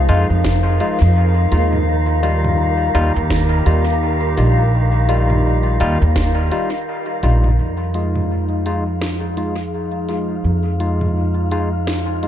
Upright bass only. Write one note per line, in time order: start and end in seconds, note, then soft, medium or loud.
0.09 0.27 F2 loud
0.30 0.77 F2 medium
1.01 1.49 F2 loud
1.52 2.92 D#2 loud
2.95 3.13 D#2 loud
3.16 3.63 D#2 medium
3.66 4.35 D#2 medium
4.38 5.78 A#1 loud
5.80 5.99 D#2 loud
6.02 6.49 D#2 loud
7.23 7.55 A#1 medium
7.59 10.42 F2 medium
10.44 12.28 F2 medium